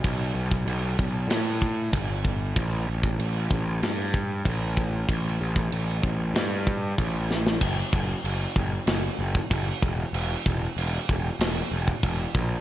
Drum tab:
CC |x---x---x---x---|x---x---x---x---|x---x---x---x---|x---x---x---x---|
SD |--------o-------|--------o-------|--------o-----oo|--------o-------|
BD |o--o--o---o-o-o-|o--o--o---o-o-o-|o--o--o---o-o---|o-o---o----oo-o-|

CC |x---x---x---x---|
SD |--------o-------|
BD |--o---o----oo-o-|